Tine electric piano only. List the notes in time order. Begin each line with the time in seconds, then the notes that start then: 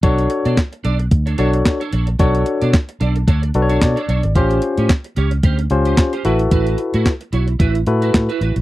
0.03 D4 F#4 A4 C#5
1.39 D4 F#4 A4 C#5
2.19 D4 F#4 A4 C#5
3.55 D4 F#4 A4 B4
3.62 C#5
3.82 D5
4.35 C#4 F4 G4 C5
5.71 C#4 F4 G4 C5
6.25 E4 F#4 A4 B4
7.87 E4 F#4 A4 B4